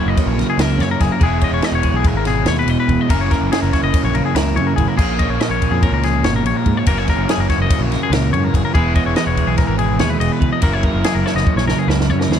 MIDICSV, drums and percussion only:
0, 0, Header, 1, 2, 480
1, 0, Start_track
1, 0, Tempo, 418410
1, 1395, Time_signature, 9, 3, 24, 8
1, 14218, End_track
2, 0, Start_track
2, 0, Title_t, "Drums"
2, 198, Note_on_c, 9, 51, 102
2, 200, Note_on_c, 9, 36, 110
2, 313, Note_off_c, 9, 51, 0
2, 314, Note_off_c, 9, 36, 0
2, 447, Note_on_c, 9, 51, 70
2, 454, Note_on_c, 9, 38, 32
2, 562, Note_off_c, 9, 51, 0
2, 568, Note_off_c, 9, 38, 0
2, 677, Note_on_c, 9, 51, 100
2, 684, Note_on_c, 9, 38, 113
2, 791, Note_off_c, 9, 51, 0
2, 798, Note_off_c, 9, 38, 0
2, 918, Note_on_c, 9, 51, 76
2, 925, Note_on_c, 9, 38, 40
2, 1033, Note_off_c, 9, 51, 0
2, 1040, Note_off_c, 9, 38, 0
2, 1152, Note_on_c, 9, 51, 73
2, 1154, Note_on_c, 9, 36, 83
2, 1159, Note_on_c, 9, 38, 36
2, 1267, Note_off_c, 9, 51, 0
2, 1269, Note_off_c, 9, 36, 0
2, 1274, Note_off_c, 9, 38, 0
2, 1385, Note_on_c, 9, 51, 98
2, 1391, Note_on_c, 9, 36, 116
2, 1500, Note_off_c, 9, 51, 0
2, 1506, Note_off_c, 9, 36, 0
2, 1622, Note_on_c, 9, 51, 72
2, 1630, Note_on_c, 9, 36, 89
2, 1737, Note_off_c, 9, 51, 0
2, 1745, Note_off_c, 9, 36, 0
2, 1862, Note_on_c, 9, 51, 91
2, 1868, Note_on_c, 9, 38, 97
2, 1976, Note_off_c, 9, 51, 0
2, 1983, Note_off_c, 9, 38, 0
2, 2100, Note_on_c, 9, 51, 76
2, 2109, Note_on_c, 9, 36, 72
2, 2214, Note_off_c, 9, 51, 0
2, 2224, Note_off_c, 9, 36, 0
2, 2343, Note_on_c, 9, 51, 96
2, 2348, Note_on_c, 9, 36, 112
2, 2458, Note_off_c, 9, 51, 0
2, 2463, Note_off_c, 9, 36, 0
2, 2582, Note_on_c, 9, 51, 66
2, 2589, Note_on_c, 9, 38, 33
2, 2697, Note_off_c, 9, 51, 0
2, 2704, Note_off_c, 9, 38, 0
2, 2819, Note_on_c, 9, 51, 101
2, 2826, Note_on_c, 9, 38, 114
2, 2934, Note_off_c, 9, 51, 0
2, 2940, Note_off_c, 9, 38, 0
2, 3070, Note_on_c, 9, 51, 81
2, 3184, Note_off_c, 9, 51, 0
2, 3314, Note_on_c, 9, 51, 75
2, 3315, Note_on_c, 9, 36, 76
2, 3429, Note_off_c, 9, 36, 0
2, 3429, Note_off_c, 9, 51, 0
2, 3555, Note_on_c, 9, 51, 111
2, 3556, Note_on_c, 9, 36, 116
2, 3670, Note_off_c, 9, 51, 0
2, 3671, Note_off_c, 9, 36, 0
2, 3796, Note_on_c, 9, 36, 88
2, 3796, Note_on_c, 9, 51, 84
2, 3803, Note_on_c, 9, 38, 36
2, 3911, Note_off_c, 9, 36, 0
2, 3911, Note_off_c, 9, 51, 0
2, 3918, Note_off_c, 9, 38, 0
2, 4043, Note_on_c, 9, 51, 104
2, 4050, Note_on_c, 9, 38, 106
2, 4158, Note_off_c, 9, 51, 0
2, 4165, Note_off_c, 9, 38, 0
2, 4279, Note_on_c, 9, 36, 73
2, 4281, Note_on_c, 9, 51, 83
2, 4288, Note_on_c, 9, 38, 35
2, 4394, Note_off_c, 9, 36, 0
2, 4396, Note_off_c, 9, 51, 0
2, 4403, Note_off_c, 9, 38, 0
2, 4516, Note_on_c, 9, 51, 102
2, 4519, Note_on_c, 9, 36, 116
2, 4631, Note_off_c, 9, 51, 0
2, 4634, Note_off_c, 9, 36, 0
2, 4757, Note_on_c, 9, 51, 75
2, 4872, Note_off_c, 9, 51, 0
2, 4999, Note_on_c, 9, 51, 102
2, 5006, Note_on_c, 9, 38, 110
2, 5114, Note_off_c, 9, 51, 0
2, 5120, Note_off_c, 9, 38, 0
2, 5244, Note_on_c, 9, 51, 73
2, 5359, Note_off_c, 9, 51, 0
2, 5482, Note_on_c, 9, 36, 85
2, 5483, Note_on_c, 9, 51, 74
2, 5597, Note_off_c, 9, 36, 0
2, 5598, Note_off_c, 9, 51, 0
2, 5720, Note_on_c, 9, 49, 105
2, 5721, Note_on_c, 9, 36, 121
2, 5834, Note_off_c, 9, 49, 0
2, 5835, Note_off_c, 9, 36, 0
2, 5956, Note_on_c, 9, 51, 73
2, 5962, Note_on_c, 9, 36, 83
2, 6071, Note_off_c, 9, 51, 0
2, 6076, Note_off_c, 9, 36, 0
2, 6202, Note_on_c, 9, 51, 86
2, 6209, Note_on_c, 9, 38, 116
2, 6317, Note_off_c, 9, 51, 0
2, 6324, Note_off_c, 9, 38, 0
2, 6444, Note_on_c, 9, 36, 71
2, 6446, Note_on_c, 9, 51, 73
2, 6558, Note_off_c, 9, 36, 0
2, 6560, Note_off_c, 9, 51, 0
2, 6683, Note_on_c, 9, 51, 97
2, 6685, Note_on_c, 9, 36, 106
2, 6798, Note_off_c, 9, 51, 0
2, 6799, Note_off_c, 9, 36, 0
2, 6922, Note_on_c, 9, 51, 67
2, 6929, Note_on_c, 9, 38, 31
2, 7037, Note_off_c, 9, 51, 0
2, 7044, Note_off_c, 9, 38, 0
2, 7160, Note_on_c, 9, 51, 103
2, 7167, Note_on_c, 9, 38, 105
2, 7275, Note_off_c, 9, 51, 0
2, 7282, Note_off_c, 9, 38, 0
2, 7406, Note_on_c, 9, 51, 73
2, 7521, Note_off_c, 9, 51, 0
2, 7637, Note_on_c, 9, 51, 76
2, 7642, Note_on_c, 9, 36, 76
2, 7751, Note_off_c, 9, 51, 0
2, 7757, Note_off_c, 9, 36, 0
2, 7875, Note_on_c, 9, 51, 107
2, 7882, Note_on_c, 9, 36, 109
2, 7989, Note_off_c, 9, 51, 0
2, 7997, Note_off_c, 9, 36, 0
2, 8118, Note_on_c, 9, 51, 80
2, 8121, Note_on_c, 9, 36, 83
2, 8125, Note_on_c, 9, 38, 36
2, 8233, Note_off_c, 9, 51, 0
2, 8236, Note_off_c, 9, 36, 0
2, 8240, Note_off_c, 9, 38, 0
2, 8363, Note_on_c, 9, 51, 100
2, 8370, Note_on_c, 9, 38, 113
2, 8478, Note_off_c, 9, 51, 0
2, 8485, Note_off_c, 9, 38, 0
2, 8599, Note_on_c, 9, 51, 86
2, 8600, Note_on_c, 9, 36, 74
2, 8606, Note_on_c, 9, 38, 36
2, 8714, Note_off_c, 9, 36, 0
2, 8714, Note_off_c, 9, 51, 0
2, 8721, Note_off_c, 9, 38, 0
2, 8838, Note_on_c, 9, 51, 117
2, 8839, Note_on_c, 9, 36, 116
2, 8953, Note_off_c, 9, 36, 0
2, 8953, Note_off_c, 9, 51, 0
2, 9082, Note_on_c, 9, 51, 76
2, 9089, Note_on_c, 9, 38, 32
2, 9196, Note_off_c, 9, 51, 0
2, 9203, Note_off_c, 9, 38, 0
2, 9323, Note_on_c, 9, 51, 104
2, 9330, Note_on_c, 9, 38, 116
2, 9438, Note_off_c, 9, 51, 0
2, 9444, Note_off_c, 9, 38, 0
2, 9562, Note_on_c, 9, 51, 77
2, 9677, Note_off_c, 9, 51, 0
2, 9798, Note_on_c, 9, 36, 84
2, 9804, Note_on_c, 9, 51, 76
2, 9913, Note_off_c, 9, 36, 0
2, 9919, Note_off_c, 9, 51, 0
2, 10036, Note_on_c, 9, 51, 93
2, 10037, Note_on_c, 9, 36, 123
2, 10151, Note_off_c, 9, 36, 0
2, 10151, Note_off_c, 9, 51, 0
2, 10273, Note_on_c, 9, 51, 76
2, 10275, Note_on_c, 9, 36, 90
2, 10387, Note_off_c, 9, 51, 0
2, 10390, Note_off_c, 9, 36, 0
2, 10508, Note_on_c, 9, 51, 88
2, 10515, Note_on_c, 9, 38, 108
2, 10623, Note_off_c, 9, 51, 0
2, 10630, Note_off_c, 9, 38, 0
2, 10753, Note_on_c, 9, 36, 68
2, 10753, Note_on_c, 9, 51, 67
2, 10868, Note_off_c, 9, 36, 0
2, 10868, Note_off_c, 9, 51, 0
2, 10985, Note_on_c, 9, 51, 106
2, 10992, Note_on_c, 9, 36, 106
2, 10992, Note_on_c, 9, 38, 37
2, 11100, Note_off_c, 9, 51, 0
2, 11107, Note_off_c, 9, 36, 0
2, 11107, Note_off_c, 9, 38, 0
2, 11228, Note_on_c, 9, 51, 67
2, 11342, Note_off_c, 9, 51, 0
2, 11464, Note_on_c, 9, 51, 102
2, 11470, Note_on_c, 9, 38, 118
2, 11578, Note_off_c, 9, 51, 0
2, 11585, Note_off_c, 9, 38, 0
2, 11713, Note_on_c, 9, 51, 82
2, 11828, Note_off_c, 9, 51, 0
2, 11950, Note_on_c, 9, 51, 76
2, 11951, Note_on_c, 9, 36, 77
2, 12065, Note_off_c, 9, 51, 0
2, 12066, Note_off_c, 9, 36, 0
2, 12179, Note_on_c, 9, 51, 103
2, 12190, Note_on_c, 9, 36, 111
2, 12294, Note_off_c, 9, 51, 0
2, 12305, Note_off_c, 9, 36, 0
2, 12424, Note_on_c, 9, 51, 77
2, 12431, Note_on_c, 9, 36, 87
2, 12539, Note_off_c, 9, 51, 0
2, 12545, Note_off_c, 9, 36, 0
2, 12668, Note_on_c, 9, 51, 96
2, 12675, Note_on_c, 9, 38, 104
2, 12783, Note_off_c, 9, 51, 0
2, 12790, Note_off_c, 9, 38, 0
2, 12924, Note_on_c, 9, 38, 62
2, 13038, Note_off_c, 9, 38, 0
2, 13042, Note_on_c, 9, 38, 53
2, 13155, Note_on_c, 9, 36, 112
2, 13156, Note_off_c, 9, 38, 0
2, 13270, Note_off_c, 9, 36, 0
2, 13280, Note_on_c, 9, 38, 58
2, 13395, Note_off_c, 9, 38, 0
2, 13405, Note_on_c, 9, 38, 75
2, 13520, Note_off_c, 9, 38, 0
2, 13649, Note_on_c, 9, 38, 89
2, 13764, Note_off_c, 9, 38, 0
2, 13771, Note_on_c, 9, 38, 73
2, 13886, Note_off_c, 9, 38, 0
2, 14006, Note_on_c, 9, 38, 84
2, 14121, Note_off_c, 9, 38, 0
2, 14134, Note_on_c, 9, 38, 106
2, 14218, Note_off_c, 9, 38, 0
2, 14218, End_track
0, 0, End_of_file